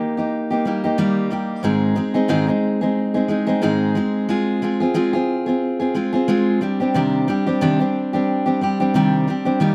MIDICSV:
0, 0, Header, 1, 2, 480
1, 0, Start_track
1, 0, Tempo, 662983
1, 1197, Time_signature, 4, 2, 24, 8
1, 7058, End_track
2, 0, Start_track
2, 0, Title_t, "Steel-string acoustic guitar"
2, 0, Program_c, 0, 25
2, 0, Note_on_c, 0, 58, 43
2, 0, Note_on_c, 0, 63, 43
2, 0, Note_on_c, 0, 67, 47
2, 116, Note_off_c, 0, 67, 0
2, 124, Note_off_c, 0, 63, 0
2, 125, Note_on_c, 0, 67, 43
2, 132, Note_off_c, 0, 58, 0
2, 132, Note_on_c, 0, 63, 43
2, 141, Note_on_c, 0, 58, 44
2, 357, Note_off_c, 0, 67, 0
2, 365, Note_on_c, 0, 67, 49
2, 366, Note_off_c, 0, 63, 0
2, 374, Note_on_c, 0, 63, 47
2, 375, Note_off_c, 0, 58, 0
2, 385, Note_on_c, 0, 58, 42
2, 472, Note_on_c, 0, 55, 56
2, 474, Note_off_c, 0, 58, 0
2, 476, Note_off_c, 0, 67, 0
2, 477, Note_off_c, 0, 63, 0
2, 483, Note_on_c, 0, 58, 55
2, 486, Note_on_c, 0, 63, 55
2, 490, Note_on_c, 0, 67, 57
2, 597, Note_off_c, 0, 67, 0
2, 605, Note_off_c, 0, 63, 0
2, 606, Note_on_c, 0, 67, 56
2, 607, Note_off_c, 0, 55, 0
2, 612, Note_off_c, 0, 58, 0
2, 614, Note_on_c, 0, 63, 51
2, 622, Note_on_c, 0, 58, 42
2, 706, Note_off_c, 0, 58, 0
2, 707, Note_off_c, 0, 63, 0
2, 708, Note_on_c, 0, 51, 72
2, 710, Note_off_c, 0, 67, 0
2, 710, Note_on_c, 0, 55, 80
2, 715, Note_on_c, 0, 58, 79
2, 715, Note_on_c, 0, 63, 76
2, 719, Note_on_c, 0, 67, 77
2, 935, Note_off_c, 0, 55, 0
2, 942, Note_off_c, 0, 58, 0
2, 944, Note_on_c, 0, 55, 50
2, 946, Note_off_c, 0, 63, 0
2, 951, Note_on_c, 0, 58, 51
2, 952, Note_off_c, 0, 67, 0
2, 953, Note_off_c, 0, 51, 0
2, 954, Note_on_c, 0, 63, 59
2, 961, Note_on_c, 0, 67, 63
2, 1179, Note_on_c, 0, 44, 69
2, 1182, Note_off_c, 0, 55, 0
2, 1182, Note_off_c, 0, 63, 0
2, 1183, Note_on_c, 0, 51, 69
2, 1185, Note_off_c, 0, 58, 0
2, 1185, Note_on_c, 0, 56, 71
2, 1188, Note_on_c, 0, 60, 78
2, 1189, Note_off_c, 0, 67, 0
2, 1191, Note_on_c, 0, 63, 79
2, 1192, Note_on_c, 0, 68, 72
2, 1406, Note_off_c, 0, 56, 0
2, 1411, Note_off_c, 0, 60, 0
2, 1415, Note_on_c, 0, 56, 54
2, 1419, Note_off_c, 0, 63, 0
2, 1420, Note_on_c, 0, 60, 60
2, 1422, Note_off_c, 0, 68, 0
2, 1428, Note_off_c, 0, 44, 0
2, 1428, Note_on_c, 0, 63, 62
2, 1430, Note_off_c, 0, 51, 0
2, 1431, Note_on_c, 0, 68, 60
2, 1541, Note_off_c, 0, 68, 0
2, 1546, Note_off_c, 0, 63, 0
2, 1550, Note_on_c, 0, 68, 57
2, 1552, Note_off_c, 0, 60, 0
2, 1554, Note_on_c, 0, 63, 51
2, 1557, Note_off_c, 0, 56, 0
2, 1561, Note_on_c, 0, 60, 44
2, 1565, Note_on_c, 0, 56, 41
2, 1650, Note_off_c, 0, 56, 0
2, 1652, Note_off_c, 0, 60, 0
2, 1652, Note_on_c, 0, 44, 70
2, 1655, Note_off_c, 0, 63, 0
2, 1656, Note_off_c, 0, 68, 0
2, 1656, Note_on_c, 0, 51, 83
2, 1659, Note_on_c, 0, 56, 87
2, 1661, Note_on_c, 0, 60, 80
2, 1664, Note_on_c, 0, 63, 90
2, 1665, Note_on_c, 0, 68, 86
2, 1780, Note_off_c, 0, 68, 0
2, 1787, Note_off_c, 0, 63, 0
2, 1789, Note_on_c, 0, 68, 42
2, 1793, Note_off_c, 0, 60, 0
2, 1796, Note_on_c, 0, 63, 41
2, 1797, Note_off_c, 0, 44, 0
2, 1798, Note_off_c, 0, 56, 0
2, 1799, Note_off_c, 0, 51, 0
2, 1802, Note_on_c, 0, 60, 45
2, 1807, Note_on_c, 0, 56, 40
2, 2026, Note_off_c, 0, 68, 0
2, 2034, Note_off_c, 0, 63, 0
2, 2035, Note_on_c, 0, 68, 53
2, 2038, Note_off_c, 0, 60, 0
2, 2042, Note_off_c, 0, 56, 0
2, 2043, Note_on_c, 0, 63, 45
2, 2047, Note_on_c, 0, 60, 46
2, 2051, Note_on_c, 0, 56, 40
2, 2266, Note_off_c, 0, 68, 0
2, 2270, Note_off_c, 0, 63, 0
2, 2275, Note_on_c, 0, 68, 52
2, 2278, Note_off_c, 0, 60, 0
2, 2278, Note_on_c, 0, 63, 50
2, 2284, Note_off_c, 0, 56, 0
2, 2286, Note_on_c, 0, 60, 44
2, 2293, Note_on_c, 0, 56, 42
2, 2368, Note_off_c, 0, 56, 0
2, 2375, Note_off_c, 0, 60, 0
2, 2377, Note_on_c, 0, 56, 53
2, 2382, Note_off_c, 0, 63, 0
2, 2383, Note_on_c, 0, 60, 50
2, 2385, Note_off_c, 0, 68, 0
2, 2391, Note_on_c, 0, 63, 58
2, 2394, Note_on_c, 0, 68, 55
2, 2501, Note_off_c, 0, 68, 0
2, 2505, Note_off_c, 0, 63, 0
2, 2510, Note_on_c, 0, 68, 59
2, 2511, Note_off_c, 0, 60, 0
2, 2514, Note_on_c, 0, 63, 49
2, 2519, Note_off_c, 0, 56, 0
2, 2519, Note_on_c, 0, 60, 47
2, 2528, Note_on_c, 0, 56, 47
2, 2616, Note_off_c, 0, 56, 0
2, 2618, Note_on_c, 0, 44, 77
2, 2619, Note_off_c, 0, 60, 0
2, 2621, Note_off_c, 0, 68, 0
2, 2622, Note_off_c, 0, 63, 0
2, 2622, Note_on_c, 0, 51, 68
2, 2625, Note_on_c, 0, 56, 75
2, 2627, Note_on_c, 0, 60, 79
2, 2629, Note_on_c, 0, 68, 90
2, 2631, Note_on_c, 0, 63, 75
2, 2852, Note_off_c, 0, 56, 0
2, 2861, Note_off_c, 0, 60, 0
2, 2861, Note_on_c, 0, 56, 59
2, 2867, Note_off_c, 0, 44, 0
2, 2867, Note_off_c, 0, 63, 0
2, 2868, Note_off_c, 0, 68, 0
2, 2870, Note_off_c, 0, 51, 0
2, 2870, Note_on_c, 0, 60, 57
2, 2876, Note_on_c, 0, 63, 61
2, 2877, Note_on_c, 0, 68, 67
2, 3095, Note_off_c, 0, 56, 0
2, 3097, Note_off_c, 0, 60, 0
2, 3103, Note_on_c, 0, 56, 70
2, 3105, Note_on_c, 0, 60, 70
2, 3106, Note_off_c, 0, 68, 0
2, 3109, Note_off_c, 0, 63, 0
2, 3112, Note_on_c, 0, 65, 71
2, 3114, Note_on_c, 0, 68, 79
2, 3336, Note_off_c, 0, 56, 0
2, 3342, Note_off_c, 0, 60, 0
2, 3344, Note_on_c, 0, 56, 56
2, 3347, Note_off_c, 0, 65, 0
2, 3350, Note_on_c, 0, 60, 60
2, 3353, Note_off_c, 0, 68, 0
2, 3356, Note_on_c, 0, 65, 60
2, 3362, Note_on_c, 0, 68, 67
2, 3468, Note_off_c, 0, 68, 0
2, 3476, Note_off_c, 0, 65, 0
2, 3477, Note_on_c, 0, 68, 51
2, 3483, Note_off_c, 0, 56, 0
2, 3485, Note_on_c, 0, 65, 49
2, 3486, Note_off_c, 0, 60, 0
2, 3494, Note_on_c, 0, 60, 44
2, 3574, Note_off_c, 0, 60, 0
2, 3578, Note_on_c, 0, 56, 71
2, 3579, Note_off_c, 0, 65, 0
2, 3582, Note_off_c, 0, 68, 0
2, 3583, Note_on_c, 0, 60, 80
2, 3588, Note_on_c, 0, 65, 81
2, 3591, Note_on_c, 0, 68, 81
2, 3706, Note_off_c, 0, 68, 0
2, 3714, Note_on_c, 0, 68, 52
2, 3717, Note_off_c, 0, 65, 0
2, 3720, Note_off_c, 0, 56, 0
2, 3722, Note_off_c, 0, 60, 0
2, 3726, Note_on_c, 0, 65, 49
2, 3733, Note_on_c, 0, 60, 39
2, 3945, Note_off_c, 0, 68, 0
2, 3954, Note_on_c, 0, 68, 50
2, 3956, Note_off_c, 0, 65, 0
2, 3964, Note_off_c, 0, 60, 0
2, 3964, Note_on_c, 0, 65, 43
2, 3973, Note_on_c, 0, 60, 44
2, 4188, Note_off_c, 0, 68, 0
2, 4197, Note_off_c, 0, 65, 0
2, 4197, Note_on_c, 0, 68, 52
2, 4203, Note_off_c, 0, 60, 0
2, 4206, Note_on_c, 0, 65, 48
2, 4212, Note_on_c, 0, 60, 46
2, 4301, Note_off_c, 0, 60, 0
2, 4304, Note_on_c, 0, 56, 52
2, 4306, Note_off_c, 0, 65, 0
2, 4310, Note_on_c, 0, 60, 59
2, 4311, Note_off_c, 0, 68, 0
2, 4315, Note_on_c, 0, 65, 61
2, 4319, Note_on_c, 0, 68, 59
2, 4427, Note_off_c, 0, 68, 0
2, 4435, Note_off_c, 0, 65, 0
2, 4435, Note_on_c, 0, 68, 54
2, 4443, Note_off_c, 0, 56, 0
2, 4444, Note_on_c, 0, 65, 49
2, 4446, Note_off_c, 0, 60, 0
2, 4455, Note_on_c, 0, 60, 50
2, 4542, Note_off_c, 0, 60, 0
2, 4546, Note_on_c, 0, 56, 77
2, 4548, Note_off_c, 0, 65, 0
2, 4549, Note_off_c, 0, 68, 0
2, 4551, Note_on_c, 0, 60, 75
2, 4556, Note_on_c, 0, 65, 79
2, 4558, Note_on_c, 0, 68, 85
2, 4782, Note_off_c, 0, 56, 0
2, 4783, Note_off_c, 0, 60, 0
2, 4785, Note_on_c, 0, 55, 57
2, 4792, Note_on_c, 0, 60, 55
2, 4794, Note_off_c, 0, 65, 0
2, 4797, Note_on_c, 0, 62, 60
2, 4798, Note_off_c, 0, 68, 0
2, 4802, Note_on_c, 0, 67, 58
2, 4913, Note_off_c, 0, 67, 0
2, 4920, Note_off_c, 0, 62, 0
2, 4922, Note_on_c, 0, 67, 46
2, 4924, Note_off_c, 0, 55, 0
2, 4927, Note_off_c, 0, 60, 0
2, 4929, Note_on_c, 0, 62, 45
2, 4934, Note_on_c, 0, 60, 43
2, 4941, Note_on_c, 0, 55, 42
2, 5026, Note_off_c, 0, 60, 0
2, 5027, Note_off_c, 0, 55, 0
2, 5027, Note_on_c, 0, 48, 75
2, 5031, Note_off_c, 0, 62, 0
2, 5031, Note_off_c, 0, 67, 0
2, 5033, Note_on_c, 0, 51, 70
2, 5035, Note_on_c, 0, 60, 75
2, 5036, Note_on_c, 0, 55, 67
2, 5039, Note_on_c, 0, 67, 81
2, 5040, Note_on_c, 0, 62, 78
2, 5260, Note_off_c, 0, 55, 0
2, 5262, Note_off_c, 0, 60, 0
2, 5269, Note_on_c, 0, 55, 56
2, 5270, Note_off_c, 0, 62, 0
2, 5271, Note_on_c, 0, 60, 58
2, 5273, Note_off_c, 0, 48, 0
2, 5275, Note_off_c, 0, 67, 0
2, 5276, Note_off_c, 0, 51, 0
2, 5278, Note_on_c, 0, 62, 58
2, 5284, Note_on_c, 0, 67, 64
2, 5395, Note_off_c, 0, 67, 0
2, 5400, Note_off_c, 0, 62, 0
2, 5404, Note_on_c, 0, 67, 53
2, 5405, Note_off_c, 0, 60, 0
2, 5406, Note_off_c, 0, 55, 0
2, 5409, Note_on_c, 0, 62, 49
2, 5413, Note_on_c, 0, 60, 43
2, 5421, Note_on_c, 0, 55, 46
2, 5506, Note_off_c, 0, 55, 0
2, 5509, Note_off_c, 0, 60, 0
2, 5510, Note_off_c, 0, 62, 0
2, 5511, Note_off_c, 0, 67, 0
2, 5511, Note_on_c, 0, 48, 74
2, 5512, Note_on_c, 0, 51, 82
2, 5515, Note_on_c, 0, 55, 83
2, 5518, Note_on_c, 0, 60, 84
2, 5519, Note_on_c, 0, 62, 88
2, 5520, Note_on_c, 0, 67, 79
2, 5639, Note_off_c, 0, 67, 0
2, 5643, Note_off_c, 0, 62, 0
2, 5647, Note_off_c, 0, 48, 0
2, 5647, Note_off_c, 0, 51, 0
2, 5648, Note_on_c, 0, 67, 50
2, 5649, Note_off_c, 0, 55, 0
2, 5651, Note_off_c, 0, 60, 0
2, 5651, Note_on_c, 0, 62, 47
2, 5658, Note_on_c, 0, 60, 40
2, 5661, Note_on_c, 0, 55, 38
2, 5878, Note_off_c, 0, 67, 0
2, 5886, Note_off_c, 0, 62, 0
2, 5887, Note_on_c, 0, 67, 49
2, 5893, Note_off_c, 0, 60, 0
2, 5895, Note_on_c, 0, 62, 44
2, 5896, Note_off_c, 0, 55, 0
2, 5902, Note_on_c, 0, 60, 41
2, 5905, Note_on_c, 0, 55, 41
2, 6114, Note_off_c, 0, 67, 0
2, 6121, Note_off_c, 0, 62, 0
2, 6123, Note_on_c, 0, 67, 50
2, 6126, Note_off_c, 0, 60, 0
2, 6130, Note_off_c, 0, 55, 0
2, 6130, Note_on_c, 0, 62, 47
2, 6135, Note_on_c, 0, 60, 44
2, 6139, Note_on_c, 0, 55, 42
2, 6227, Note_off_c, 0, 55, 0
2, 6234, Note_off_c, 0, 60, 0
2, 6235, Note_off_c, 0, 67, 0
2, 6235, Note_on_c, 0, 55, 53
2, 6239, Note_off_c, 0, 62, 0
2, 6243, Note_on_c, 0, 60, 50
2, 6249, Note_on_c, 0, 62, 55
2, 6251, Note_on_c, 0, 67, 58
2, 6361, Note_off_c, 0, 67, 0
2, 6365, Note_off_c, 0, 62, 0
2, 6370, Note_off_c, 0, 55, 0
2, 6370, Note_on_c, 0, 67, 55
2, 6372, Note_off_c, 0, 60, 0
2, 6374, Note_on_c, 0, 62, 53
2, 6380, Note_on_c, 0, 60, 45
2, 6387, Note_on_c, 0, 55, 46
2, 6474, Note_off_c, 0, 55, 0
2, 6474, Note_on_c, 0, 48, 71
2, 6476, Note_off_c, 0, 60, 0
2, 6476, Note_off_c, 0, 62, 0
2, 6476, Note_off_c, 0, 67, 0
2, 6480, Note_on_c, 0, 51, 71
2, 6482, Note_on_c, 0, 55, 76
2, 6484, Note_on_c, 0, 60, 77
2, 6485, Note_on_c, 0, 62, 79
2, 6485, Note_on_c, 0, 67, 83
2, 6707, Note_off_c, 0, 55, 0
2, 6711, Note_off_c, 0, 60, 0
2, 6715, Note_on_c, 0, 55, 52
2, 6717, Note_off_c, 0, 48, 0
2, 6720, Note_off_c, 0, 62, 0
2, 6720, Note_on_c, 0, 60, 55
2, 6721, Note_off_c, 0, 51, 0
2, 6723, Note_off_c, 0, 67, 0
2, 6729, Note_on_c, 0, 62, 55
2, 6733, Note_on_c, 0, 67, 64
2, 6834, Note_off_c, 0, 67, 0
2, 6841, Note_off_c, 0, 62, 0
2, 6842, Note_on_c, 0, 67, 44
2, 6843, Note_off_c, 0, 60, 0
2, 6848, Note_off_c, 0, 55, 0
2, 6849, Note_on_c, 0, 62, 47
2, 6852, Note_on_c, 0, 60, 46
2, 6856, Note_on_c, 0, 55, 37
2, 6947, Note_off_c, 0, 55, 0
2, 6950, Note_on_c, 0, 51, 70
2, 6954, Note_off_c, 0, 60, 0
2, 6956, Note_off_c, 0, 67, 0
2, 6956, Note_on_c, 0, 55, 77
2, 6957, Note_on_c, 0, 58, 62
2, 6959, Note_off_c, 0, 62, 0
2, 6962, Note_on_c, 0, 63, 78
2, 6965, Note_on_c, 0, 67, 74
2, 7058, Note_off_c, 0, 51, 0
2, 7058, Note_off_c, 0, 55, 0
2, 7058, Note_off_c, 0, 58, 0
2, 7058, Note_off_c, 0, 63, 0
2, 7058, Note_off_c, 0, 67, 0
2, 7058, End_track
0, 0, End_of_file